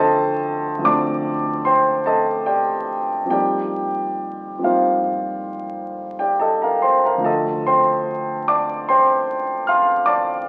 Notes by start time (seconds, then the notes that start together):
Already playing: D2 F3 A3 C4 D4 A4 C5 D#5 G5 A5 C6
0.79 D2 F3 A3
0.83 C4 D4 D5 A5 D6
1.65 C5 G5 C6
2.06 A4 D#5 A5
2.46 G4 D5 G5
3.24 F2 F3 G3
3.29 A#3 D#4 G4 D5 G5
4.58 F2 F3 G3
4.63 A#3 D#4 F4 C5 F5
6.19 G4 D5 G5
6.40 A4 D#5 A5
6.62 A#4 F5 A#5
6.82 C5 G5 C6
7.05 A#4 F5 A#5
7.17 D2 F3 A3
7.23 D4 A4 D#5 A5
7.66 C5 G5 C6
8.48 D5 A5 D6
8.88 C5 G5 C6
9.67 F5 C6 F6
10.06 D5 A5 D6